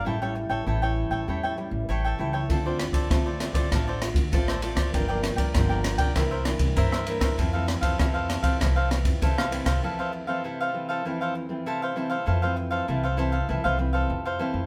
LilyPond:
<<
  \new Staff \with { instrumentName = "Cavaquinho" } { \time 4/4 \key f \major \tempo 4 = 98 <e' a' cis'' g''>16 <a' cis'' g''>16 r16 <a' cis'' g''>16 <e' a' cis'' g''>16 <a' cis'' g''>8 <a' cis'' g''>16 <e' a' cis'' g''>16 <a' cis'' g''>16 r8 <e' a' cis'' g''>16 <a' cis'' g''>16 <e' a' cis'' g''>16 <a' cis'' g''>16 | <f' a' c'' d''>16 <a' c'' d''>16 r16 <a' c'' d''>16 <f' a' c'' d''>16 <a' c'' d''>8 <a' c'' d''>16 <f' a' c'' d''>16 <a' c'' d''>16 r8 <f' a' c'' d''>16 <a' c'' d''>16 <f' a' c'' d''>16 <a' c'' d''>16 | <f' bes' d'' g''>16 <bes' d'' g''>16 r16 <bes' d'' g''>16 <f' bes' d'' g''>16 <bes' d'' g''>8 <bes' d'' g''>16 <e' bes' c'' e''>16 <bes' c'' e''>16 r8 <e' bes' c'' e''>16 <bes' c'' e''>16 <e' bes' c'' e''>16 <bes' c'' e''>16 | <e' a' c'' f''>16 <a' c'' f''>16 r16 <a' c'' f''>16 <e' a' c'' f''>16 <a' c'' f''>8 <a' c'' f''>16 <e' a' c'' f''>16 <a' c'' f''>16 r8 <e' a' c'' f''>16 <a' c'' f''>16 <e' a' c'' f''>16 <a' c'' f''>16 |
<e' a' c'' f''>16 <a' c'' f''>16 r16 <a' c'' f''>16 <e' a' c'' f''>16 <a' c'' f''>8 <a' c'' f''>16 <e' a' c'' f''>16 <a' c'' f''>16 r8 <e' a' c'' f''>16 <a' c'' f''>16 <e' a' c'' f''>16 <a' c'' f''>16 | <e' a' c'' f''>16 <a' c'' f''>16 r16 <a' c'' f''>16 <e' a' c'' f''>16 <a' c'' f''>16 <e' a' c'' f''>16 <a' c'' f''>16 <e' a' c'' f''>16 <a' c'' f''>16 r16 <a' c'' f''>8 <a' c'' f''>16 <e' a' c'' f''>8 | }
  \new Staff \with { instrumentName = "Nylon-string guitar" } { \time 4/4 \key f \major << { <g cis' e'>16 <g cis' e'>8. <g cis' e'>4 <g cis' e'>8 <g cis' e'>8. r16 <g cis' e'>16 r16 | <a c' f'>16 <a c' f'>8. <a c' f'>16 r16 <a c' f'>16 <a c' f'>16 <a c' f'>16 r16 <a c' f'>16 r16 <a c' f'>16 r16 <a c' f'>8 | <f bes d'>16 <f bes d'>8. <f bes d'>4 <e bes d'>16 r16 <e bes d'>4 <e bes d'>8 | <e a c'>16 <e a c'>8. <e a c'>4 <e a c'>16 r16 <e a c'>4 <e a c'>16 r16 |
<e a c'>8. <e a c'>8. <e a c'>8 <e a c'>8. <e a c'>8. <e a c'>16 r16 | <e a c'>16 <e a c'>8. <e a c'>16 r16 <e a c'>16 r16 <e a c'>16 <e a c'>16 <e a c'>8. r16 <e a c'>16 r16 | } \\ { a,4 e4 a,4 e4 | d4 a,4 d4 a,4 | g,4 d4 c4 g,4 | f,4 c4 f,4 c4 |
f,4 c4 f,4 c4 | f,4 c4 f,4 c4 | } >> }
  \new Staff \with { instrumentName = "Upright bass" } { \clef bass \time 4/4 \key f \major a,,8. a,,16 a,,8. a,,16 e,8. a,,16 a,,8 cis,8 | d,8. d,16 d,8. d,16 a,,8. d,16 a,,8. d,16 | g,,8. g,,16 g,,8. b,,16 c,8. c,16 g,8. e,16 | f,8. f,16 f,8. f,16 c,8. f,16 c,8. c,16 |
r1 | f,4 c,4 c,16 c,8. f,8 r16 f,16 | }
  \new DrumStaff \with { instrumentName = "Drums" } \drummode { \time 4/4 r4 r4 r4 r4 | <bd cymr>8 <cymr ss>16 <bd cymr>16 <bd cymr ss>8 <cymr ss>16 <bd cymr>16 <bd cymr ss>8 <cymr ss>16 <bd cymr>16 <bd cymr>16 ss16 cymr16 <bd cymr ss>16 | <bd cymr>8 <cymr ss>16 <bd cymr>16 <bd cymr ss>8 <cymr ss>16 <bd cymr>16 <bd cymr ss>8 <cymr ss>16 <bd cymr>16 <bd cymr>16 ss16 cymr16 <bd cymr ss>16 | <bd cymr>8 <cymr ss>16 <bd cymr>16 <bd cymr ss>8 <cymr ss>16 <bd cymr>16 <bd cymr ss>8 <cymr ss>16 <bd cymr>16 <bd cymr>16 ss16 cymr16 <bd cymr ss>16 |
r4 r4 r4 r4 | r4 r4 r4 r4 | }
>>